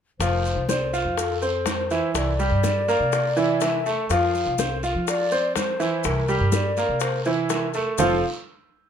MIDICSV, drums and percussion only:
0, 0, Header, 1, 2, 480
1, 0, Start_track
1, 0, Key_signature, -1, "major"
1, 0, Tempo, 486224
1, 203, Time_signature, 4, 2, 24, 8
1, 8782, End_track
2, 0, Start_track
2, 0, Title_t, "Drums"
2, 201, Note_on_c, 9, 63, 33
2, 202, Note_on_c, 9, 60, 66
2, 204, Note_on_c, 9, 70, 67
2, 205, Note_on_c, 9, 74, 64
2, 300, Note_off_c, 9, 63, 0
2, 301, Note_off_c, 9, 60, 0
2, 303, Note_off_c, 9, 70, 0
2, 304, Note_off_c, 9, 74, 0
2, 438, Note_on_c, 9, 63, 32
2, 444, Note_on_c, 9, 70, 26
2, 537, Note_off_c, 9, 63, 0
2, 543, Note_off_c, 9, 70, 0
2, 678, Note_on_c, 9, 63, 83
2, 680, Note_on_c, 9, 60, 59
2, 683, Note_on_c, 9, 73, 68
2, 686, Note_on_c, 9, 70, 64
2, 777, Note_off_c, 9, 63, 0
2, 779, Note_off_c, 9, 60, 0
2, 782, Note_off_c, 9, 73, 0
2, 784, Note_off_c, 9, 70, 0
2, 918, Note_on_c, 9, 63, 30
2, 925, Note_on_c, 9, 70, 29
2, 927, Note_on_c, 9, 73, 65
2, 1017, Note_off_c, 9, 63, 0
2, 1024, Note_off_c, 9, 70, 0
2, 1026, Note_off_c, 9, 73, 0
2, 1160, Note_on_c, 9, 60, 64
2, 1161, Note_on_c, 9, 63, 33
2, 1163, Note_on_c, 9, 74, 69
2, 1168, Note_on_c, 9, 70, 72
2, 1259, Note_off_c, 9, 60, 0
2, 1260, Note_off_c, 9, 63, 0
2, 1261, Note_off_c, 9, 74, 0
2, 1267, Note_off_c, 9, 70, 0
2, 1402, Note_on_c, 9, 63, 33
2, 1405, Note_on_c, 9, 70, 28
2, 1501, Note_off_c, 9, 63, 0
2, 1504, Note_off_c, 9, 70, 0
2, 1636, Note_on_c, 9, 60, 67
2, 1636, Note_on_c, 9, 61, 80
2, 1640, Note_on_c, 9, 70, 71
2, 1643, Note_on_c, 9, 63, 83
2, 1646, Note_on_c, 9, 73, 64
2, 1735, Note_off_c, 9, 60, 0
2, 1735, Note_off_c, 9, 61, 0
2, 1739, Note_off_c, 9, 70, 0
2, 1741, Note_off_c, 9, 63, 0
2, 1745, Note_off_c, 9, 73, 0
2, 1879, Note_on_c, 9, 70, 29
2, 1884, Note_on_c, 9, 73, 65
2, 1891, Note_on_c, 9, 63, 35
2, 1978, Note_off_c, 9, 70, 0
2, 1982, Note_off_c, 9, 73, 0
2, 1990, Note_off_c, 9, 63, 0
2, 2121, Note_on_c, 9, 70, 65
2, 2123, Note_on_c, 9, 74, 64
2, 2124, Note_on_c, 9, 60, 70
2, 2129, Note_on_c, 9, 63, 35
2, 2219, Note_off_c, 9, 70, 0
2, 2222, Note_off_c, 9, 74, 0
2, 2223, Note_off_c, 9, 60, 0
2, 2228, Note_off_c, 9, 63, 0
2, 2365, Note_on_c, 9, 70, 26
2, 2366, Note_on_c, 9, 60, 34
2, 2373, Note_on_c, 9, 63, 32
2, 2463, Note_off_c, 9, 70, 0
2, 2464, Note_off_c, 9, 60, 0
2, 2471, Note_off_c, 9, 63, 0
2, 2601, Note_on_c, 9, 60, 60
2, 2601, Note_on_c, 9, 70, 65
2, 2606, Note_on_c, 9, 63, 82
2, 2606, Note_on_c, 9, 73, 67
2, 2700, Note_off_c, 9, 60, 0
2, 2700, Note_off_c, 9, 70, 0
2, 2705, Note_off_c, 9, 63, 0
2, 2705, Note_off_c, 9, 73, 0
2, 2845, Note_on_c, 9, 60, 34
2, 2846, Note_on_c, 9, 63, 32
2, 2848, Note_on_c, 9, 70, 26
2, 2848, Note_on_c, 9, 73, 68
2, 2943, Note_off_c, 9, 60, 0
2, 2945, Note_off_c, 9, 63, 0
2, 2947, Note_off_c, 9, 70, 0
2, 2947, Note_off_c, 9, 73, 0
2, 3082, Note_on_c, 9, 70, 71
2, 3085, Note_on_c, 9, 63, 31
2, 3090, Note_on_c, 9, 60, 63
2, 3091, Note_on_c, 9, 74, 68
2, 3181, Note_off_c, 9, 70, 0
2, 3183, Note_off_c, 9, 63, 0
2, 3189, Note_off_c, 9, 60, 0
2, 3190, Note_off_c, 9, 74, 0
2, 3322, Note_on_c, 9, 70, 28
2, 3324, Note_on_c, 9, 63, 32
2, 3421, Note_off_c, 9, 70, 0
2, 3423, Note_off_c, 9, 63, 0
2, 3560, Note_on_c, 9, 70, 69
2, 3570, Note_on_c, 9, 60, 66
2, 3570, Note_on_c, 9, 61, 84
2, 3571, Note_on_c, 9, 63, 34
2, 3572, Note_on_c, 9, 73, 69
2, 3659, Note_off_c, 9, 70, 0
2, 3669, Note_off_c, 9, 60, 0
2, 3669, Note_off_c, 9, 61, 0
2, 3670, Note_off_c, 9, 63, 0
2, 3671, Note_off_c, 9, 73, 0
2, 3811, Note_on_c, 9, 70, 30
2, 3812, Note_on_c, 9, 73, 67
2, 3817, Note_on_c, 9, 60, 31
2, 3909, Note_off_c, 9, 70, 0
2, 3911, Note_off_c, 9, 73, 0
2, 3916, Note_off_c, 9, 60, 0
2, 4047, Note_on_c, 9, 70, 67
2, 4048, Note_on_c, 9, 63, 36
2, 4050, Note_on_c, 9, 74, 69
2, 4056, Note_on_c, 9, 60, 65
2, 4145, Note_off_c, 9, 70, 0
2, 4147, Note_off_c, 9, 63, 0
2, 4149, Note_off_c, 9, 74, 0
2, 4155, Note_off_c, 9, 60, 0
2, 4291, Note_on_c, 9, 70, 28
2, 4292, Note_on_c, 9, 63, 32
2, 4390, Note_off_c, 9, 63, 0
2, 4390, Note_off_c, 9, 70, 0
2, 4523, Note_on_c, 9, 70, 70
2, 4528, Note_on_c, 9, 63, 87
2, 4529, Note_on_c, 9, 73, 71
2, 4536, Note_on_c, 9, 60, 58
2, 4622, Note_off_c, 9, 70, 0
2, 4627, Note_off_c, 9, 63, 0
2, 4628, Note_off_c, 9, 73, 0
2, 4635, Note_off_c, 9, 60, 0
2, 4768, Note_on_c, 9, 73, 65
2, 4769, Note_on_c, 9, 70, 27
2, 4773, Note_on_c, 9, 63, 32
2, 4867, Note_off_c, 9, 70, 0
2, 4867, Note_off_c, 9, 73, 0
2, 4871, Note_off_c, 9, 63, 0
2, 5009, Note_on_c, 9, 70, 73
2, 5011, Note_on_c, 9, 74, 71
2, 5012, Note_on_c, 9, 63, 32
2, 5015, Note_on_c, 9, 60, 66
2, 5108, Note_off_c, 9, 70, 0
2, 5109, Note_off_c, 9, 74, 0
2, 5111, Note_off_c, 9, 63, 0
2, 5114, Note_off_c, 9, 60, 0
2, 5247, Note_on_c, 9, 70, 29
2, 5252, Note_on_c, 9, 63, 31
2, 5346, Note_off_c, 9, 70, 0
2, 5351, Note_off_c, 9, 63, 0
2, 5485, Note_on_c, 9, 60, 64
2, 5485, Note_on_c, 9, 61, 83
2, 5487, Note_on_c, 9, 73, 67
2, 5491, Note_on_c, 9, 70, 68
2, 5494, Note_on_c, 9, 63, 81
2, 5583, Note_off_c, 9, 60, 0
2, 5583, Note_off_c, 9, 61, 0
2, 5586, Note_off_c, 9, 73, 0
2, 5590, Note_off_c, 9, 70, 0
2, 5593, Note_off_c, 9, 63, 0
2, 5724, Note_on_c, 9, 70, 27
2, 5728, Note_on_c, 9, 73, 71
2, 5735, Note_on_c, 9, 63, 34
2, 5823, Note_off_c, 9, 70, 0
2, 5827, Note_off_c, 9, 73, 0
2, 5834, Note_off_c, 9, 63, 0
2, 5960, Note_on_c, 9, 70, 63
2, 5963, Note_on_c, 9, 74, 65
2, 5964, Note_on_c, 9, 63, 36
2, 5973, Note_on_c, 9, 60, 70
2, 6059, Note_off_c, 9, 70, 0
2, 6062, Note_off_c, 9, 74, 0
2, 6063, Note_off_c, 9, 63, 0
2, 6072, Note_off_c, 9, 60, 0
2, 6201, Note_on_c, 9, 70, 28
2, 6209, Note_on_c, 9, 63, 33
2, 6210, Note_on_c, 9, 60, 34
2, 6299, Note_off_c, 9, 70, 0
2, 6308, Note_off_c, 9, 63, 0
2, 6309, Note_off_c, 9, 60, 0
2, 6436, Note_on_c, 9, 70, 65
2, 6440, Note_on_c, 9, 63, 87
2, 6445, Note_on_c, 9, 73, 67
2, 6450, Note_on_c, 9, 60, 58
2, 6535, Note_off_c, 9, 70, 0
2, 6538, Note_off_c, 9, 63, 0
2, 6544, Note_off_c, 9, 73, 0
2, 6549, Note_off_c, 9, 60, 0
2, 6681, Note_on_c, 9, 73, 65
2, 6682, Note_on_c, 9, 70, 28
2, 6683, Note_on_c, 9, 63, 34
2, 6687, Note_on_c, 9, 60, 32
2, 6780, Note_off_c, 9, 73, 0
2, 6781, Note_off_c, 9, 70, 0
2, 6782, Note_off_c, 9, 63, 0
2, 6786, Note_off_c, 9, 60, 0
2, 6911, Note_on_c, 9, 70, 75
2, 6924, Note_on_c, 9, 63, 33
2, 6925, Note_on_c, 9, 60, 65
2, 6927, Note_on_c, 9, 74, 66
2, 7010, Note_off_c, 9, 70, 0
2, 7022, Note_off_c, 9, 63, 0
2, 7023, Note_off_c, 9, 60, 0
2, 7026, Note_off_c, 9, 74, 0
2, 7157, Note_on_c, 9, 70, 30
2, 7163, Note_on_c, 9, 63, 33
2, 7256, Note_off_c, 9, 70, 0
2, 7262, Note_off_c, 9, 63, 0
2, 7399, Note_on_c, 9, 70, 72
2, 7404, Note_on_c, 9, 60, 68
2, 7404, Note_on_c, 9, 61, 82
2, 7405, Note_on_c, 9, 73, 69
2, 7407, Note_on_c, 9, 63, 34
2, 7497, Note_off_c, 9, 70, 0
2, 7503, Note_off_c, 9, 60, 0
2, 7503, Note_off_c, 9, 61, 0
2, 7504, Note_off_c, 9, 73, 0
2, 7506, Note_off_c, 9, 63, 0
2, 7639, Note_on_c, 9, 70, 29
2, 7647, Note_on_c, 9, 73, 65
2, 7652, Note_on_c, 9, 60, 33
2, 7737, Note_off_c, 9, 70, 0
2, 7746, Note_off_c, 9, 73, 0
2, 7750, Note_off_c, 9, 60, 0
2, 7877, Note_on_c, 9, 70, 96
2, 7883, Note_on_c, 9, 64, 103
2, 7884, Note_on_c, 9, 61, 94
2, 7888, Note_on_c, 9, 74, 92
2, 7975, Note_off_c, 9, 70, 0
2, 7982, Note_off_c, 9, 64, 0
2, 7983, Note_off_c, 9, 61, 0
2, 7987, Note_off_c, 9, 74, 0
2, 8782, End_track
0, 0, End_of_file